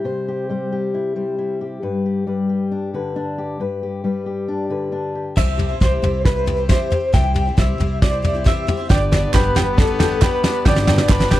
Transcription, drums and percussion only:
5.37 kick, snare, floor tom, crash
5.59 floor tom
5.81 kick, snare, floor tom
6.03 floor tom
6.25 kick, snare, floor tom
6.47 floor tom
6.69 kick, snare, floor tom
6.92 floor tom
7.14 kick, snare, floor tom
7.36 floor tom
7.58 kick, snare, floor tom
7.80 floor tom
8.02 kick, snare, floor tom
8.24 floor tom
8.46 kick, snare, floor tom
8.68 floor tom
8.90 kick, snare, floor tom
9.12 snare, floor tom
9.34 kick, snare, clap, floor tom
9.56 snare, floor tom
9.78 kick, snare, floor tom
10.00 snare, floor tom
10.22 kick, snare, clap, floor tom
10.44 snare, floor tom
10.66 kick, snare, floor tom
10.76 snare
10.87 snare, floor tom
10.98 snare
11.09 kick, snare, clap, floor tom
11.20 snare
11.31 snare, floor tom

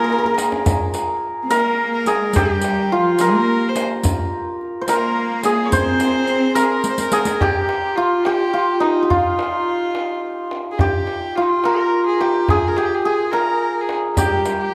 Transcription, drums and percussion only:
0.10 tombak tek
0.24 tombak ka
0.38 riq, tombak tek
0.52 tombak ka
0.66 riq, tombak dum
0.94 riq, tombak tek
1.23 tombak ka
1.50 riq, tombak tek
2.06 riq, tombak tek
2.33 riq, tombak dum
2.61 riq, tombak tek
2.92 tombak ka
3.19 riq, tombak tek
3.76 riq, tombak tek
4.03 riq, tombak dum
4.61 tombak ka
4.88 riq, tombak tek
5.43 riq, tombak tek
5.72 riq, tombak dum
6.00 riq, tombak tek
6.27 riq, tombak ka
6.56 riq, tombak tek
6.84 riq, tombak tek
6.98 riq, tombak ka
7.12 riq, tombak tek
7.25 riq, tombak ka
7.41 tombak dum
7.69 tombak tek
8.25 tombak tek
8.82 tombak tek
9.11 tombak dum
9.39 tombak tek
9.95 tombak tek
10.51 tombak tek
10.79 tombak dum
11.07 tombak tek
11.64 tombak tek
12.21 tombak tek
12.48 tombak dum
12.77 tombak tek
13.05 tombak ka
13.33 tombak tek
13.89 tombak tek
14.17 riq, tombak dum
14.45 riq, tombak tek

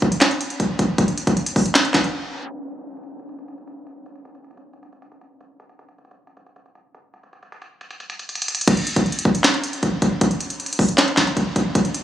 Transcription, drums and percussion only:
0.02 kick
0.12 closed hi-hat
0.21 snare, clap, closed hi-hat
0.31 closed hi-hat
0.41 closed hi-hat
0.50 closed hi-hat
0.60 kick, closed hi-hat
0.79 kick, closed hi-hat
0.98 kick, closed hi-hat
1.08 closed hi-hat
1.18 closed hi-hat
1.27 kick, closed hi-hat
1.37 closed hi-hat
1.46 closed hi-hat
1.56 kick, open hi-hat
1.66 closed hi-hat
1.75 snare, clap, closed hi-hat
1.85 closed hi-hat
1.94 kick, snare, clap, closed hi-hat
2.04 closed hi-hat
2.52 closed hi-hat
2.62 closed hi-hat
2.71 closed hi-hat
2.81 closed hi-hat
2.91 closed hi-hat
2.97 closed hi-hat
3.03 closed hi-hat
3.19 closed hi-hat
3.29 closed hi-hat
3.39 closed hi-hat
3.48 closed hi-hat
3.58 closed hi-hat
3.68 closed hi-hat
3.87 closed hi-hat
4.06 closed hi-hat
4.16 closed hi-hat
4.25 closed hi-hat
4.35 closed hi-hat
4.44 closed hi-hat
4.51 closed hi-hat
4.57 closed hi-hat
4.73 closed hi-hat
4.83 closed hi-hat
4.93 closed hi-hat
5.02 closed hi-hat
5.12 closed hi-hat
5.21 closed hi-hat
5.41 closed hi-hat
5.60 closed hi-hat
5.69 closed hi-hat
5.79 closed hi-hat
5.89 closed hi-hat
5.98 closed hi-hat
6.05 closed hi-hat
6.11 closed hi-hat
6.27 closed hi-hat
6.37 closed hi-hat
6.46 closed hi-hat
6.56 closed hi-hat
6.66 closed hi-hat
6.75 closed hi-hat
6.95 closed hi-hat
7.14 closed hi-hat
7.23 closed hi-hat
7.33 closed hi-hat
7.43 closed hi-hat
7.52 closed hi-hat
7.62 closed hi-hat
7.81 closed hi-hat
7.91 closed hi-hat
8.00 closed hi-hat
8.10 closed hi-hat
8.19 closed hi-hat
8.29 closed hi-hat
8.35 closed hi-hat
8.42 closed hi-hat
8.48 closed hi-hat
8.55 closed hi-hat
8.61 closed hi-hat
8.68 kick, closed hi-hat, crash
8.77 closed hi-hat
8.87 closed hi-hat
8.96 kick, closed hi-hat
9.06 closed hi-hat
9.12 closed hi-hat
9.19 closed hi-hat
9.25 kick
9.35 closed hi-hat
9.44 snare, clap, closed hi-hat
9.54 closed hi-hat
9.64 closed hi-hat
9.73 closed hi-hat
9.83 kick, closed hi-hat
10.02 kick, closed hi-hat
10.21 kick, closed hi-hat
10.31 closed hi-hat
10.41 closed hi-hat
10.50 closed hi-hat
10.60 closed hi-hat
10.66 closed hi-hat
10.73 closed hi-hat
10.79 kick, open hi-hat
10.89 closed hi-hat
10.98 snare, clap, closed hi-hat
11.08 closed hi-hat
11.17 kick, snare, clap, closed hi-hat
11.27 closed hi-hat
11.37 kick, closed hi-hat
11.56 kick, closed hi-hat
11.75 kick, closed hi-hat
11.85 closed hi-hat
11.94 closed hi-hat

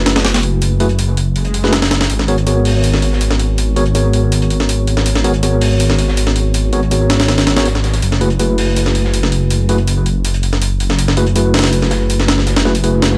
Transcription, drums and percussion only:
0.06 snare, open hi-hat, shaker
0.16 snare, open hi-hat
0.25 snare, open hi-hat, shaker
0.34 snare, open hi-hat
0.43 open hi-hat, shaker
0.61 open hi-hat, shaker
0.80 open hi-hat, shaker
0.89 closed hi-hat
0.99 open hi-hat, shaker
1.17 open hi-hat
1.36 open hi-hat, shaker
1.45 closed hi-hat
1.54 open hi-hat, shaker
1.64 snare
1.73 snare, open hi-hat, shaker
1.82 snare, open hi-hat, shaker
1.91 snare, open hi-hat
2.01 snare, open hi-hat, shaker
2.10 open hi-hat, shaker
2.19 snare
2.28 open hi-hat, shaker
2.38 closed hi-hat
2.47 open hi-hat, shaker
2.65 open hi-hat
2.84 open hi-hat, shaker
2.94 snare
3.02 open hi-hat, shaker
3.13 snare
3.21 open hi-hat, shaker
3.31 snare
3.39 open hi-hat, shaker
3.58 open hi-hat, shaker
3.76 open hi-hat, shaker
3.86 closed hi-hat
3.95 open hi-hat, shaker
4.13 open hi-hat, shaker
4.32 open hi-hat, shaker
4.42 closed hi-hat
4.50 open hi-hat, shaker
4.60 snare
4.69 open hi-hat, shaker
4.87 open hi-hat, shaker
4.97 snare
5.06 open hi-hat, shaker
5.15 snare
5.24 open hi-hat, shaker
5.34 closed hi-hat
5.43 open hi-hat, shaker
5.61 open hi-hat
5.80 open hi-hat, shaker
5.89 snare
5.98 open hi-hat, shaker
6.08 snare
6.17 open hi-hat, shaker
6.27 snare
6.36 open hi-hat, shaker
6.54 open hi-hat, shaker
6.73 open hi-hat, shaker
6.83 closed hi-hat
6.91 open hi-hat, shaker
7.10 snare, open hi-hat, shaker
7.14 snare, shaker
7.20 snare, open hi-hat
7.24 snare, shaker
7.28 snare, open hi-hat, shaker
7.38 snare, closed hi-hat, open hi-hat
7.47 snare, open hi-hat, shaker
7.57 snare, open hi-hat
7.65 snare, open hi-hat, shaker
7.75 snare, shaker
7.84 snare, open hi-hat, shaker
7.93 snare, open hi-hat, shaker
8.02 open hi-hat, shaker
8.12 snare
8.20 open hi-hat, shaker
8.30 closed hi-hat
8.39 open hi-hat, shaker
8.58 open hi-hat
8.76 open hi-hat, shaker
8.86 snare
8.94 open hi-hat, shaker
9.05 snare
9.14 open hi-hat, shaker
9.23 snare
9.32 open hi-hat, shaker
9.50 open hi-hat, shaker
9.69 open hi-hat, shaker
9.78 closed hi-hat
9.87 open hi-hat, shaker
10.06 open hi-hat, shaker
10.25 open hi-hat, shaker
10.34 closed hi-hat
10.42 open hi-hat, shaker
10.53 snare
10.62 open hi-hat, shaker
10.80 open hi-hat, shaker
10.90 snare
10.98 open hi-hat, shaker
11.08 snare
11.17 open hi-hat, shaker
11.26 closed hi-hat
11.36 open hi-hat, shaker
11.54 snare, open hi-hat
11.59 snare, open hi-hat
11.64 snare, open hi-hat
11.72 open hi-hat, shaker
11.82 snare
11.90 snare, open hi-hat, shaker
12.10 open hi-hat, shaker
12.20 snare, shaker
12.28 snare, open hi-hat
12.38 snare, shaker
12.46 snare, open hi-hat, shaker
12.56 snare, open hi-hat
12.64 snare, shaker
12.75 closed hi-hat, open hi-hat
12.84 open hi-hat, shaker
13.02 snare, open hi-hat, shaker
13.12 snare, shaker

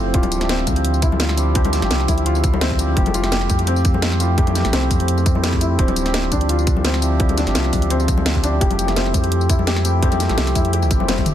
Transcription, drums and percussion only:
0.14 kick, closed hi-hat
0.23 closed hi-hat, high conga
0.32 closed hi-hat, tambourine
0.41 snare, closed hi-hat, high bongo
0.49 snare, closed hi-hat
0.59 snare
0.67 kick, closed hi-hat, tambourine, high conga
0.76 closed hi-hat
0.85 closed hi-hat
0.94 tambourine
1.02 kick, closed hi-hat, tambourine
1.12 high conga
1.20 snare, closed hi-hat
1.29 snare
1.38 closed hi-hat, tambourine
1.55 kick, closed hi-hat
1.65 closed hi-hat, high conga
1.73 snare, closed hi-hat, tambourine
1.82 snare, closed hi-hat
1.91 snare, closed hi-hat
2.00 snare
2.08 kick, open hi-hat, tambourine, high conga
2.18 closed hi-hat
2.26 closed hi-hat
2.35 tambourine, high bongo
2.44 kick, closed hi-hat, tambourine, high bongo
2.54 high conga
2.61 snare, closed hi-hat
2.70 kick, high bongo
2.79 closed hi-hat, tambourine
2.97 kick, closed hi-hat
3.06 closed hi-hat, high conga
3.14 closed hi-hat, tambourine
3.24 snare, closed hi-hat, high bongo
3.32 snare, closed hi-hat
3.41 snare
3.50 kick, closed hi-hat, tambourine, high conga
3.59 closed hi-hat
3.67 closed hi-hat
3.76 tambourine
3.85 kick, closed hi-hat, tambourine
3.94 high conga
4.02 snare, closed hi-hat
4.12 snare
4.20 closed hi-hat, tambourine
4.38 kick, closed hi-hat
4.47 closed hi-hat, high conga
4.55 snare, closed hi-hat, tambourine
4.65 snare, closed hi-hat
4.73 snare, closed hi-hat
4.83 snare
4.91 kick, open hi-hat, tambourine, high conga
5.00 closed hi-hat
5.08 closed hi-hat
5.18 tambourine, high bongo
5.26 kick, closed hi-hat, tambourine, high bongo
5.35 high conga
5.44 snare, closed hi-hat
5.53 kick, high bongo
5.61 closed hi-hat, tambourine
5.79 kick, closed hi-hat
5.88 closed hi-hat, high conga
5.96 closed hi-hat, tambourine
6.06 snare, closed hi-hat, high bongo
6.14 snare, closed hi-hat
6.23 snare
6.32 kick, closed hi-hat, tambourine, high conga
6.41 closed hi-hat
6.49 closed hi-hat
6.59 tambourine
6.67 kick, closed hi-hat, tambourine
6.76 high conga
6.85 snare, closed hi-hat
6.94 snare
7.02 closed hi-hat, tambourine
7.20 kick, closed hi-hat
7.29 closed hi-hat, high conga
7.38 snare, closed hi-hat, tambourine
7.47 snare, closed hi-hat
7.55 snare, closed hi-hat
7.64 snare
7.73 kick, open hi-hat, tambourine, high conga
7.82 closed hi-hat
7.90 closed hi-hat
8.00 tambourine, high bongo
8.08 kick, closed hi-hat, tambourine, high bongo
8.17 high conga
8.26 snare, closed hi-hat
8.35 kick, high bongo
8.44 closed hi-hat, tambourine
8.61 kick, closed hi-hat
8.71 closed hi-hat, high conga
8.79 closed hi-hat, tambourine
8.88 snare, closed hi-hat, high bongo
8.96 snare, closed hi-hat
9.06 snare
9.14 kick, closed hi-hat, tambourine, high conga
9.24 closed hi-hat
9.32 closed hi-hat
9.41 tambourine
9.49 kick, closed hi-hat, tambourine
9.59 high conga
9.67 snare, closed hi-hat
9.76 snare
9.85 closed hi-hat, tambourine
10.03 kick, closed hi-hat
10.12 closed hi-hat, tambourine, high conga
10.20 snare, closed hi-hat, tambourine
10.29 snare, closed hi-hat
10.38 snare, closed hi-hat
10.47 snare, closed hi-hat, tambourine
10.55 kick, open hi-hat, tambourine, high conga
10.65 closed hi-hat
10.73 closed hi-hat
10.82 tambourine, high bongo
10.91 kick, closed hi-hat, tambourine, high bongo
11.00 high conga
11.09 snare, closed hi-hat, high tom
11.18 kick, high tom, tambourine, high bongo
11.26 closed hi-hat, mid tom, tambourine

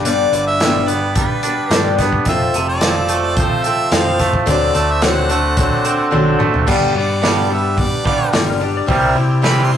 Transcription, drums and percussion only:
0.05 closed hi-hat
0.33 closed hi-hat
0.60 snare, closed hi-hat
0.88 closed hi-hat
1.15 kick, closed hi-hat
1.43 closed hi-hat
1.71 snare, closed hi-hat
1.99 kick, snare, closed hi-hat
2.13 kick
2.25 kick, closed hi-hat
2.54 closed hi-hat
2.81 snare, closed hi-hat
3.09 closed hi-hat
3.37 kick, closed hi-hat
3.64 closed hi-hat
3.92 snare, closed hi-hat
4.19 kick, snare, closed hi-hat
4.34 kick
4.47 kick, closed hi-hat
4.75 closed hi-hat
5.02 snare, closed hi-hat
5.30 closed hi-hat
5.57 kick, closed hi-hat
5.85 closed hi-hat
6.12 high tom
6.40 mid tom
6.54 floor tom
6.68 kick, crash
7.23 snare, open hi-hat
7.78 kick, open hi-hat
8.05 kick
8.33 snare, open hi-hat
8.89 kick, open hi-hat
9.44 snare, open hi-hat

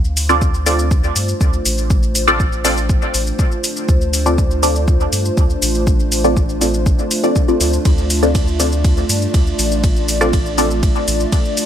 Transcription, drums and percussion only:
0.05 shaker
0.17 open hi-hat, shaker
0.29 shaker
0.42 kick, shaker
0.54 shaker
0.66 open hi-hat, shaker
0.79 shaker
0.91 kick, shaker
1.04 shaker
1.16 open hi-hat, shaker
1.28 shaker
1.41 kick, shaker
1.53 shaker
1.65 open hi-hat, shaker
1.78 shaker
1.90 kick, shaker
2.03 shaker
2.15 open hi-hat, shaker
2.28 shaker
2.40 kick, shaker
2.52 shaker
2.65 open hi-hat, shaker
2.77 shaker
2.89 kick, shaker
3.02 shaker
3.14 open hi-hat, shaker
3.27 shaker
3.39 kick, shaker
3.52 shaker
3.64 open hi-hat, shaker
3.76 shaker
3.89 kick, shaker
4.01 shaker
4.13 open hi-hat, shaker
4.26 shaker
4.38 kick, shaker
4.51 shaker
4.63 open hi-hat, shaker
4.76 shaker
4.88 kick, shaker
5.00 shaker
5.13 open hi-hat, shaker
5.25 shaker
5.37 kick, shaker
5.50 shaker
5.62 open hi-hat, shaker
5.75 shaker
5.87 kick, shaker
6.00 shaker
6.12 open hi-hat, shaker
6.24 shaker
6.37 kick, shaker
6.49 shaker
6.61 open hi-hat, shaker
6.74 shaker
6.86 kick, shaker
6.99 shaker
7.11 open hi-hat, shaker
7.24 shaker
7.36 kick, shaker
7.48 shaker
7.61 open hi-hat, shaker
7.73 shaker
7.85 kick, ride, shaker
7.98 shaker
8.10 open hi-hat, shaker
8.23 shaker
8.35 kick, ride, shaker
8.47 shaker
8.60 open hi-hat, shaker
8.72 shaker
8.85 kick, ride, shaker
8.97 shaker
9.09 open hi-hat, shaker
9.22 shaker
9.34 kick, ride, shaker
9.47 shaker
9.59 open hi-hat, shaker
9.71 shaker
9.84 kick, ride, shaker
9.96 shaker
10.08 open hi-hat, shaker
10.21 shaker
10.33 kick, ride, shaker
10.46 shaker
10.58 open hi-hat, shaker
10.71 shaker
10.83 kick, ride, shaker
10.95 shaker
11.08 open hi-hat, shaker
11.20 shaker
11.32 kick, ride, shaker
11.45 shaker
11.57 open hi-hat, shaker

